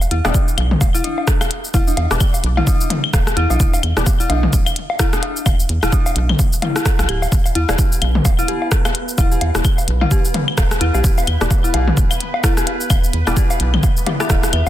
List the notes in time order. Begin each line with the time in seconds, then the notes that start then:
0.01 low woodblock, shaker
0.11 E2 E4, closed hi-hat
0.25 E1 B3 D4 E4 G4 D5, cross-stick, low woodblock, shaker
0.34 kick, shaker
0.48 shaker
0.58 B1, closed hi-hat, claves, low woodblock
0.71 mid tom
0.81 E1, kick, low woodblock, shaker
0.94 E4, shaker
1.04 D4, closed hi-hat
1.18 low woodblock
1.27 kick, cross-stick, shaker
1.41 cross-stick, claves, low woodblock, shaker
1.51 closed hi-hat
1.64 shaker
1.74 E1 E4, kick, low woodblock, shaker
1.87 D4, shaker
1.97 E2, closed hi-hat, low woodblock
2.11 E1 B3 E4 G4 D5, cross-stick, shaker
2.20 kick, claves, shaker
2.34 low woodblock, shaker
2.44 B1, closed hi-hat
2.57 E4, mid tom, low woodblock
2.67 D4, kick, shaker
2.81 shaker
2.90 closed hi-hat, mid tom, low woodblock
3.04 claves
3.13 D1, kick, cross-stick, low woodblock, shaker
3.27 cross-stick, shaker
3.37 E2 E4, closed hi-hat
3.50 B1 D4, low woodblock, shaker
3.60 E1, kick, shaker
3.74 low woodblock, shaker
3.83 E2, closed hi-hat, claves
3.97 E1 B3 E4 G4 D5, cross-stick, shaker
4.06 kick, low woodblock, shaker
4.20 E4, shaker
4.30 B1 D4, closed hi-hat, low woodblock
4.43 mid tom
4.53 E1, kick, shaker
4.66 claves, low woodblock, shaker
4.76 closed hi-hat
4.90 low woodblock
4.99 E4, kick, cross-stick, shaker
5.13 D4, cross-stick, shaker
5.23 closed hi-hat, low woodblock
5.36 shaker
5.46 E1, kick, claves, low woodblock, shaker
5.60 shaker
5.69 E2, closed hi-hat
5.83 E1 E4, cross-stick, low woodblock, shaker
5.92 D4, kick, shaker
6.06 low woodblock, shaker
6.16 B1, closed hi-hat
6.29 mid tom, claves
6.39 kick, low woodblock, shaker
6.53 shaker
6.62 E4, closed hi-hat, mid tom, low woodblock
6.76 E4, cross-stick, shaker
6.86 kick, cross-stick, shaker
6.99 B1 E4, cross-stick, low woodblock, shaker
7.09 D1 G4, closed hi-hat, claves
7.22 low woodblock, shaker
7.32 E1 B3 B4, kick, shaker
7.46 low woodblock, shaker
7.55 E2 E4, closed hi-hat
7.69 E1 B3 E4 G4 D5, cross-stick, low woodblock, shaker
7.79 kick, shaker
7.92 shaker
8.02 B1, closed hi-hat, claves, low woodblock
8.15 mid tom
8.25 E1, kick, low woodblock, shaker
8.39 E4, shaker
8.48 G4, closed hi-hat
8.62 low woodblock
8.72 kick, cross-stick, shaker
8.85 cross-stick, claves, low woodblock, shaker
8.95 closed hi-hat
9.08 shaker
9.18 E1 E4, kick, low woodblock, shaker
9.32 G4, shaker
9.41 E2, closed hi-hat, low woodblock
9.55 E1 B3 E4 G4 D5, cross-stick, shaker
9.65 kick, claves, shaker
9.78 low woodblock, shaker
9.88 B1, closed hi-hat
10.01 E4, mid tom, low woodblock
10.11 G4, kick, shaker
10.25 shaker
10.34 closed hi-hat, mid tom, low woodblock
10.48 claves
10.58 D1, kick, cross-stick, low woodblock, shaker
10.71 cross-stick, shaker
10.81 E2 E4, closed hi-hat
10.94 B1 G4, low woodblock, shaker
11.04 E1, kick, shaker
11.18 low woodblock, shaker
11.27 E2, closed hi-hat, claves
11.41 E1 B3 E4 G4 D5, cross-stick, shaker
11.51 kick, low woodblock, shaker
11.64 E4, shaker
11.74 B1 G4, closed hi-hat, low woodblock
11.88 mid tom
11.97 E1, kick, shaker
12.11 claves, low woodblock, shaker
12.21 closed hi-hat
12.34 low woodblock
12.44 E4, kick, cross-stick, shaker
12.57 G4, cross-stick, shaker
12.67 closed hi-hat, low woodblock
12.81 shaker
12.90 E1, kick, claves, low woodblock, shaker
13.04 shaker
13.13 E2, closed hi-hat
13.27 E1 B3 E4 G4 D5, cross-stick, low woodblock, shaker
13.37 G4, kick, shaker
13.50 low woodblock, shaker
13.60 B1, closed hi-hat
13.74 mid tom, claves
13.83 kick, low woodblock, shaker
13.97 shaker
14.06 B3 E4 G4 D5, closed hi-hat, mid tom, low woodblock
14.20 B3 E4 G4 D5 E5, cross-stick, shaker
14.30 D1 E4, kick, cross-stick, shaker
14.43 cross-stick, low woodblock, shaker
14.53 E2 E5, closed hi-hat, claves